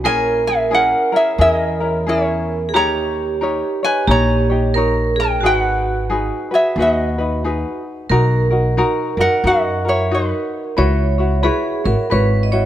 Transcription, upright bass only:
0.05 0.92 A#1 medium
1.38 2.73 E2 medium
2.73 3.61 D#2 medium
4.07 5.42 A#1 medium
5.42 6.29 G#1 medium
6.76 7.63 D#2 medium
8.10 8.80 B1 medium
9.17 9.26 F#2 medium
9.44 10.31 F#2 medium
10.78 11.48 C#2 medium
11.85 11.94 G#1 medium
12.12 12.65 G#1 medium

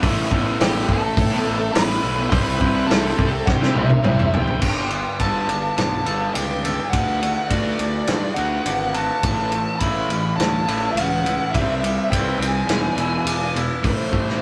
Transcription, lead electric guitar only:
0.62 0.88 G4 medium
0.62 0.91 G5 medium
0.91 1.72 A4 medium
0.91 1.79 A5 loud
1.72 2.29 B4 medium
1.72 2.30 B5 loud
2.30 2.42 C6 loud
2.34 2.47 C5 medium
2.43 2.89 B5 loud
2.48 2.87 B4 medium
2.87 3.43 A4 medium
2.87 3.46 A5 medium
3.46 4.30 G4 medium
3.46 4.29 G5 medium
3.78 4.31 E5 medium
4.35 5.17 G5 medium
5.21 5.74 A5 medium
5.77 6.31 A5 medium
6.35 6.89 G5 medium
6.90 7.51 F#5 medium
7.48 8.39 D5 medium
8.34 8.94 F#5 loud
8.94 9.75 A5 loud
9.76 9.82 A5 medium
9.76 10.40 B5 medium
10.36 10.92 A5 loud
10.92 11.54 F#5 medium
11.51 12.12 E5 medium
12.10 12.38 G5 medium
12.40 13.51 G#5 medium
13.86 14.41 C5 medium

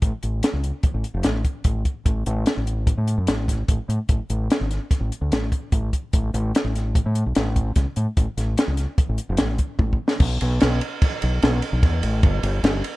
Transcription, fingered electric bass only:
0.02 0.11 A1 medium
0.23 0.40 A1 medium
0.53 0.71 C#2 medium
0.94 1.03 A1 medium
1.14 1.23 F#1 medium
1.24 1.42 A1 medium
1.65 1.82 A1 medium
2.06 2.23 A1 medium
2.27 2.44 A1 medium
2.57 2.91 A1 medium
2.98 3.15 A2 medium
3.18 3.27 F#2 medium
3.28 3.62 A1 medium
3.68 3.77 A1 medium
3.89 3.98 A2 medium
4.09 4.18 A1 medium
4.30 4.47 A1 medium
4.61 4.78 G#1 medium
5.01 5.10 A1 medium
5.21 5.30 D2 medium
5.32 5.49 A1 medium
5.72 5.90 A1 medium
6.14 6.31 A1 medium
6.34 6.51 A1 loud
6.64 6.99 A1 medium
7.06 7.23 A2 medium
7.26 7.35 B1 medium
7.37 7.71 A1 medium
7.76 7.85 C#2 medium
7.97 8.05 A2 medium
8.17 8.26 A1 medium
8.37 8.55 A1 medium
8.68 8.85 C#2 medium
9.09 9.18 A1 medium
9.29 9.38 F#1 medium
9.40 9.57 A1 loud
9.79 9.97 A1 medium
10.20 10.37 B1 loud
10.42 10.59 B1 loud
10.63 10.79 B1 medium
11.23 11.40 B1 loud
11.43 11.60 B1 medium
11.73 11.82 B1 loud
11.83 12.00 E2 loud
12.03 12.21 A1 loud
12.23 12.41 G1 loud
12.43 12.61 G1 medium
12.64 12.81 G1 loud

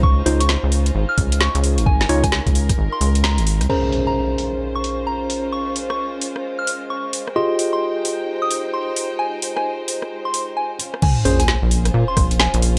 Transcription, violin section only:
0.00 3.66 D#4 medium
0.00 3.66 F4 medium
0.00 3.66 G#4 medium
0.00 1.83 C5 medium
1.86 3.68 A#4 medium
3.70 10.99 G#3 medium
3.70 7.32 C#4 medium
3.70 7.32 F4 medium
3.70 7.32 C5 medium
7.36 10.76 D#4 medium
7.36 10.99 C5 medium
7.36 10.76 G5 medium
10.79 11.01 C#4 medium
10.79 11.01 F4 medium
11.02 12.79 C#4 medium
11.02 12.79 F4 medium
11.02 12.79 G#4 medium
11.02 12.79 C5 medium

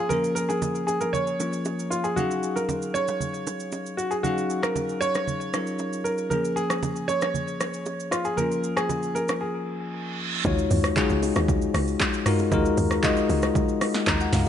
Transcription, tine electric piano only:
0.00 0.09 F3 medium
0.00 0.11 A#3 medium
0.00 0.12 C#4 medium
0.00 2.19 G#4 medium
0.09 1.37 F3 medium
0.09 1.37 A#3 medium
0.09 1.38 C#4 medium
0.09 1.38 A#4 medium
1.40 2.17 F3 soft
1.40 2.17 A#3 soft
1.40 2.16 C#4 soft
1.40 2.18 F4 medium
2.16 4.20 F#3 medium
2.16 4.20 C#4 medium
2.16 4.21 D#4 medium
2.16 4.21 G#4 medium
2.16 4.21 F5 medium
4.23 5.50 F#3 medium
4.23 5.51 C#4 medium
4.23 5.51 D#4 medium
4.23 5.52 G#4 medium
4.23 5.52 F5 medium
5.53 6.31 F#3 soft
5.53 6.31 C#4 soft
5.53 6.31 D#4 soft
5.53 6.32 F4 soft
5.53 6.32 A#4 medium
6.30 8.33 F3 medium
6.30 8.34 A#3 medium
6.30 8.35 C#4 medium
6.30 8.35 G#4 medium
8.37 10.40 F3 medium
8.37 10.41 A#3 medium
8.37 10.42 C#4 medium
8.37 10.42 F4 medium
10.45 10.87 G#3 medium
10.45 10.87 D#4 medium
10.45 10.87 F4 medium
10.45 10.87 F#4 medium
10.45 10.88 C#5 loud
10.96 11.79 G#3 medium
10.96 11.80 D#4 medium
10.96 11.80 F4 medium
10.96 11.80 F#4 medium
10.96 11.80 G#4 loud
12.26 12.47 G#3 medium
12.26 12.47 D#4 medium
12.26 12.47 F4 medium
12.26 12.47 F#4 medium
12.26 12.48 A#4 medium
12.52 12.94 G#3 medium
12.52 12.94 D#4 medium
12.52 12.94 F4 medium
12.52 12.94 F#4 medium
12.52 12.94 A#4 loud
13.04 13.86 G#3 loud
13.04 13.87 D#4 medium
13.04 13.87 F4 medium
13.04 13.87 F#4 medium
13.04 13.82 D#5 loud
14.08 14.20 A#5 medium
14.21 14.33 F#5 medium
14.34 14.46 F5 medium

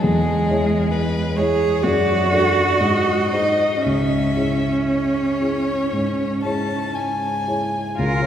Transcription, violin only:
0.01 0.93 G#4 soft
0.92 1.38 B4 soft
1.37 1.83 C#5 soft
1.82 2.29 D5 soft
2.30 2.81 D5 soft
2.80 3.84 D#5 soft
3.83 4.77 E5 soft
4.87 6.39 C#5 soft
6.43 6.97 A5 soft
6.95 7.98 G#5 soft

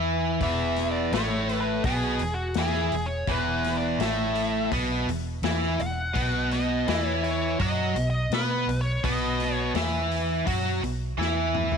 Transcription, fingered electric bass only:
0.00 0.36 E2 medium
0.41 1.09 E1 medium
1.12 1.80 A1 medium
1.84 2.18 B1 medium
2.19 2.53 E1 medium
2.56 2.90 E2 medium
2.92 3.26 E1 medium
3.27 3.96 E1 medium
3.98 4.67 A1 medium
4.71 5.05 B1 medium
5.06 5.41 E1 medium
5.42 5.77 E2 medium
5.79 6.13 E1 medium
6.16 6.84 B1 medium
6.87 7.55 E2 medium
7.60 7.93 F#2 medium
7.94 8.28 B1 medium
8.30 8.64 B2 medium
8.67 9.00 B1 medium
9.04 9.71 B1 medium
9.74 10.42 E2 medium
10.46 10.80 F#2 medium
10.81 11.15 B1 medium
11.17 11.78 E2 medium

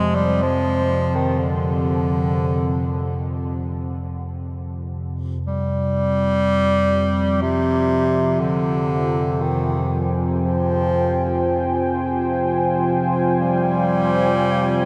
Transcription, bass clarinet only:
0.00 0.17 G#3 loud
0.15 0.44 G3 medium
0.42 1.17 F3 medium
1.16 1.40 D#3 medium
1.38 3.40 D3 medium
5.46 7.43 G3 loud
7.41 8.41 C3 medium
8.40 9.43 D3 medium
9.41 10.14 D#3 medium
10.43 11.88 F3 medium
13.40 14.85 G3 loud

